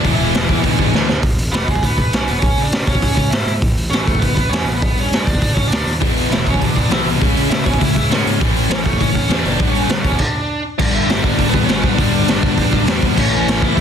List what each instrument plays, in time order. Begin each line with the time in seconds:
Already playing: distorted electric guitar E2 B2 E3 G#3 B3 E4
0.03 picked electric bass E1, distorted electric guitar E2 B2 E3, lead electric guitar E3 E4, kick, open hi-hat
0.19 picked electric bass E1
0.34 picked electric bass E1, snare, open hi-hat
0.49 picked electric bass E1, kick
0.61 picked electric bass D2, distorted electric guitar E2 B2 E3 G#3, kick, open hi-hat
0.65 distorted electric guitar B3 E4, lead electric guitar D4
0.78 picked electric bass G#1, distorted electric guitar E3 G#3 B3 E4, kick
0.93 picked electric bass D2, snare
1.09 snare
1.23 picked electric bass E1, kick, open hi-hat
1.37 picked electric bass E1, open hi-hat
1.52 picked electric bass E1, lead electric guitar B3 B4, snare, open hi-hat
1.67 picked electric bass E1, lead electric guitar G#3 G#4, kick, open hi-hat
1.76 kick
1.82 picked electric bass D2, lead electric guitar B3 B4, kick, open hi-hat
1.98 picked electric bass E1, lead electric guitar B3 B4, kick, open hi-hat
2.13 picked electric bass B1, lead electric guitar C#4 C#5, snare, open hi-hat
2.26 picked electric bass E1, lead electric guitar B3 B4, open hi-hat
2.39 picked electric bass C#2, lead electric guitar C#4 C#5, kick, open hi-hat
2.57 picked electric bass C#3, open hi-hat
2.63 lead electric guitar D4 D5
2.72 picked electric bass C#3, snare, open hi-hat
2.86 picked electric bass B2, lead electric guitar C#4 C#5, kick, open hi-hat
2.95 kick
3.02 picked electric bass C#2, kick, open hi-hat
3.16 picked electric bass C#2, lead electric guitar C#4 C#5, kick, open hi-hat
3.30 picked electric bass G#2, lead electric guitar E4 E5, snare, open hi-hat
3.46 picked electric bass G#2, open hi-hat
3.62 picked electric bass A1, kick, open hi-hat
3.77 picked electric bass A1, open hi-hat
3.90 picked electric bass A1, lead electric guitar C#4 C#5, snare, open hi-hat
4.04 picked electric bass A1, lead electric guitar A3 A4, kick, open hi-hat
4.15 kick
4.20 picked electric bass F#1, lead electric guitar B3 B4, kick, open hi-hat
4.35 picked electric bass A1, lead electric guitar B3 B4, kick, open hi-hat
4.49 picked electric bass E2, lead electric guitar C#4 C#5, open hi-hat
4.54 snare
4.64 picked electric bass A1, lead electric guitar B3 B4, open hi-hat
4.77 lead electric guitar B4
4.82 picked electric bass G1, lead electric guitar B3, kick, open hi-hat
4.96 picked electric bass G2, lead electric guitar C#5, open hi-hat
5.04 lead electric guitar C#4
5.11 picked electric bass G2, snare, open hi-hat
5.22 lead electric guitar D5
5.27 picked electric bass E2, lead electric guitar D4, kick, open hi-hat
5.35 kick
5.42 picked electric bass G1, kick, open hi-hat
5.54 picked electric bass G1, lead electric guitar C#4 C#5, kick, open hi-hat
5.67 lead electric guitar D4 D5
5.72 picked electric bass D2, snare, open hi-hat
5.86 picked electric bass D#2, open hi-hat
6.01 picked electric bass E1, distorted electric guitar E2 B2 E3 G#3 B3 E4, kick, open hi-hat
6.15 picked electric bass E1, open hi-hat
6.30 picked electric bass E1, distorted electric guitar E2 B2, lead electric guitar E4 E5, snare, open hi-hat
6.47 picked electric bass E1, lead electric guitar C#4 C#5, kick, open hi-hat
6.54 kick
6.61 picked electric bass D2, distorted electric guitar E2 B2, lead electric guitar D4, kick, open hi-hat
6.66 lead electric guitar D5
6.76 picked electric bass E1, lead electric guitar D4 D5, kick, open hi-hat
6.90 picked electric bass B1, distorted electric guitar E2 B2 E3, lead electric guitar E4 E5, snare, open hi-hat
7.06 picked electric bass C2, open hi-hat
7.19 picked electric bass C#2, distorted electric guitar C#3 G#3 C#4 E4, kick, open hi-hat
7.35 picked electric bass C#3, open hi-hat
7.50 distorted electric guitar C#3 G#3, picked electric bass C#3, lead electric guitar E4 E5, snare, open hi-hat
7.65 picked electric bass B2, lead electric guitar C#4 C#5, kick, open hi-hat
7.74 kick
7.79 picked electric bass C#2, distorted electric guitar C#3 G#3, lead electric guitar E4 E5, kick, open hi-hat
7.95 picked electric bass C#2, lead electric guitar E4 E5, kick, open hi-hat
8.10 picked electric bass G#2, distorted electric guitar C#3 G#3 C#4, lead electric guitar F#4 F#5, snare, open hi-hat
8.26 picked electric bass G#2, open hi-hat
8.39 picked electric bass A1, distorted electric guitar A2 E3 A3 C#4 E4, kick, open hi-hat
8.55 picked electric bass A1, open hi-hat
8.70 picked electric bass A1, distorted electric guitar A2 E3, lead electric guitar C#4 C#5, snare, open hi-hat
8.81 lead electric guitar A3 A4
8.86 picked electric bass A1, kick, open hi-hat
8.93 kick
8.98 picked electric bass F#1, distorted electric guitar A2 E3, lead electric guitar C#4 C#5, kick, open hi-hat
9.10 lead electric guitar C#4 C#5
9.15 picked electric bass A1, kick, open hi-hat
9.30 picked electric bass E2, distorted electric guitar A2 E3 A3, snare, open hi-hat
9.40 lead electric guitar D5
9.44 picked electric bass F#1, lead electric guitar D4, open hi-hat
9.59 picked electric bass G1, distorted electric guitar G2 D3 G3 B3 D4, kick, open hi-hat
9.69 lead electric guitar C#5
9.74 picked electric bass G2, lead electric guitar C#4, open hi-hat
9.83 lead electric guitar B4
9.88 picked electric bass G2, distorted electric guitar G2 D3, lead electric guitar B3, snare, open hi-hat
9.98 lead electric guitar C#4 C#5
10.04 picked electric bass E2, kick, open hi-hat
10.12 lead electric guitar D5, kick
10.19 lead electric guitar D4, kick, crash
10.79 picked electric bass G1, distorted electric guitar G2 D3 G3 B3 D4, lead electric guitar D4 D5, kick, crash
10.93 picked electric bass G1, lead electric guitar E4 E5
11.08 picked electric bass G1, snare, open hi-hat
11.23 picked electric bass G1, lead electric guitar D4 D5, kick
11.38 picked electric bass G1, distorted electric guitar G2 D3 G3, kick, open hi-hat
11.50 lead electric guitar B3 B4, distorted electric guitar D4
11.54 picked electric bass E2, distorted electric guitar G2 D3 G3 B3, kick
11.65 picked electric bass G1, distorted electric guitar G2 D3, lead electric guitar C#4 C#5, open hi-hat
11.69 distorted electric guitar G3 B3 D4, snare
11.81 picked electric bass B1, lead electric guitar B4, kick
11.85 lead electric guitar B3
11.94 picked electric bass G1, distorted electric guitar G2 D3 G3 B3, lead electric guitar D4 D5
11.99 distorted electric guitar D3 G3 D4, kick, open hi-hat
12.13 picked electric bass G1
12.28 picked electric bass G1, snare, open hi-hat
12.43 picked electric bass G1, kick
12.57 picked electric bass E2, distorted electric guitar G2 D3 G3, kick, open hi-hat
12.72 picked electric bass B1, distorted electric guitar G2 D3 G3 B3 D4, kick
12.86 picked electric bass E2, distorted electric guitar G2 D3 G3 B3 D4, snare, open hi-hat
13.02 kick
13.15 picked electric bass A1, distorted electric guitar A2 E3 A3 C#4 E4, lead electric guitar C#4 C#5, kick, crash
13.31 picked electric bass A1, lead electric guitar C#4 C#5
13.47 picked electric bass A1, snare, open hi-hat
13.62 picked electric bass A1, lead electric guitar E4 E5, kick
13.75 picked electric bass A1, distorted electric guitar A2 E3, lead electric guitar E4 E5, kick